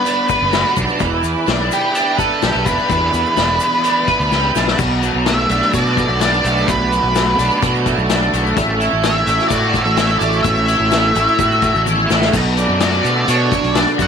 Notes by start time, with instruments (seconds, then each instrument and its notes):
Already playing: overdriven electric guitar G3 B3 B4, lead electric guitar B4, string section B4 F#5 B5 D6
0.05 overdriven electric guitar D4, closed hi-hat, shaker
0.28 overdriven electric guitar B4, kick, closed hi-hat, shaker
0.42 fingered electric bass F#1
0.52 overdriven electric guitar F#4, snare, closed hi-hat, shaker
0.76 fingered electric bass B1, overdriven electric guitar D4, kick, closed hi-hat, shaker
0.88 shaker
0.99 fingered electric bass E1, overdriven electric guitar E3, string section E5, kick, closed hi-hat, shaker
1.24 fingered electric bass E2, closed hi-hat, shaker
1.46 fingered electric bass B1, overdriven electric guitar D4, snare, closed hi-hat, shaker
1.71 overdriven electric guitar B3, lead electric guitar G4, closed hi-hat, shaker
1.94 overdriven electric guitar D4, closed hi-hat, shaker
2.17 lead electric guitar A4, overdriven electric guitar B4, kick, closed hi-hat, shaker
2.42 fingered electric bass B1, overdriven electric guitar G4, snare, closed hi-hat, shaker
2.55 fingered electric bass B1
2.65 fingered electric bass E1, overdriven electric guitar D4, lead electric guitar B4, kick, closed hi-hat, shaker
2.78 shaker
2.89 fingered electric bass E2, overdriven electric guitar E3, kick, closed hi-hat, shaker
3.13 fingered electric bass E2, closed hi-hat, shaker
3.26 shaker
3.36 fingered electric bass E1, overdriven electric guitar D4, snare, closed hi-hat, shaker
3.60 overdriven electric guitar B3, closed hi-hat, shaker
3.73 shaker
3.84 overdriven electric guitar D4, closed hi-hat, shaker
4.07 overdriven electric guitar B4, kick, closed hi-hat
4.20 fingered electric bass D2, shaker
4.31 fingered electric bass C#2, overdriven electric guitar G4, snare, shaker
4.55 fingered electric bass B1, overdriven electric guitar D4, snare, shaker
4.68 snare
4.79 fingered electric bass B1, overdriven electric guitar B2, string section B4 F#5 A5 D6, kick, crash, shaker
5.02 overdriven electric guitar F#3, closed hi-hat, shaker
5.14 fingered electric bass B1
5.26 overdriven electric guitar A3, lead electric guitar E5, snare, closed hi-hat, shaker
5.49 fingered electric bass B1, overdriven electric guitar D4, closed hi-hat, shaker
5.61 snare, shaker
5.73 fingered electric bass B2, overdriven electric guitar F#4, lead electric guitar D5, kick, closed hi-hat, shaker
5.86 shaker
5.97 overdriven electric guitar A3, kick, closed hi-hat, shaker
6.09 fingered electric bass B1, shaker
6.21 overdriven electric guitar D4, lead electric guitar D5, snare, closed hi-hat, shaker
6.33 shaker
6.44 fingered electric bass B1, overdriven electric guitar A3, closed hi-hat, shaker
6.57 shaker
6.67 fingered electric bass B1, overdriven electric guitar B2, lead electric guitar B4, kick, closed hi-hat, shaker
6.91 overdriven electric guitar F#3, closed hi-hat, shaker
7.04 fingered electric bass B1
7.15 overdriven electric guitar A3, snare, closed hi-hat, shaker
7.38 fingered electric bass B1, overdriven electric guitar D4, closed hi-hat, shaker
7.51 shaker
7.62 fingered electric bass B2, overdriven electric guitar F#4, kick, closed hi-hat, shaker
7.75 shaker
7.86 overdriven electric guitar A3, kick, closed hi-hat, shaker
7.98 fingered electric bass B1, shaker
8.10 overdriven electric guitar D4, snare, closed hi-hat, shaker
8.23 shaker
8.33 fingered electric bass B1, overdriven electric guitar A3, closed hi-hat, shaker
8.46 shaker
8.56 fingered electric bass A1, overdriven electric guitar A3, string section F#4 E5 C#6, kick, closed hi-hat, shaker
8.80 overdriven electric guitar E4, closed hi-hat, shaker
8.93 fingered electric bass A1
9.04 overdriven electric guitar A3, lead electric guitar E5, snare, closed hi-hat, shaker
9.27 fingered electric bass A1, overdriven electric guitar E4, closed hi-hat, shaker
9.39 snare, shaker
9.48 fingered electric bass A2, overdriven electric guitar F#4, lead electric guitar D5, kick, closed hi-hat, shaker
9.63 shaker
9.74 overdriven electric guitar A3, kick, closed hi-hat, shaker
9.84 fingered electric bass A1, lead electric guitar E5, shaker
9.97 overdriven electric guitar E4, snare, closed hi-hat, shaker
10.09 shaker
10.19 fingered electric bass A1, overdriven electric guitar A3, lead electric guitar D5, closed hi-hat, shaker
10.33 shaker
10.43 fingered electric bass A1, overdriven electric guitar A3, lead electric guitar E5, kick, closed hi-hat, shaker
10.56 shaker
10.68 overdriven electric guitar E4, closed hi-hat, shaker
10.80 fingered electric bass A1
10.91 overdriven electric guitar A3, snare, closed hi-hat, shaker
11.15 fingered electric bass A1, overdriven electric guitar E4, closed hi-hat, shaker
11.28 shaker
11.39 fingered electric bass A2, overdriven electric guitar F#4, kick, closed hi-hat, shaker
11.52 shaker
11.62 overdriven electric guitar A3, kick, closed hi-hat, shaker
11.75 fingered electric bass A1, shaker
11.86 overdriven electric guitar E4, high tom, shaker
12.10 fingered electric bass A1, overdriven electric guitar A3, snare, shaker
12.21 snare
12.33 fingered electric bass B1, overdriven electric guitar B2, string section B3 D4 F#4 A4, kick, crash, shaker
12.57 overdriven electric guitar D5, closed hi-hat, shaker
12.69 fingered electric bass F#2
12.80 overdriven electric guitar F#4, lead electric guitar D5, snare, closed hi-hat, shaker
12.92 closed hi-hat
13.04 fingered electric bass B2, overdriven electric guitar A3, closed hi-hat, shaker
13.28 fingered electric bass B2, overdriven electric guitar D4, lead electric guitar C#5, closed hi-hat, shaker
13.52 overdriven electric guitar D5, kick, closed hi-hat, shaker
13.63 fingered electric bass B1, closed hi-hat
13.75 overdriven electric guitar D4, lead electric guitar D5, snare, closed hi-hat, shaker
13.87 closed hi-hat
13.98 fingered electric bass F#2, overdriven electric guitar F#4, kick, snare, closed hi-hat, shaker
14.02 lead electric guitar F#5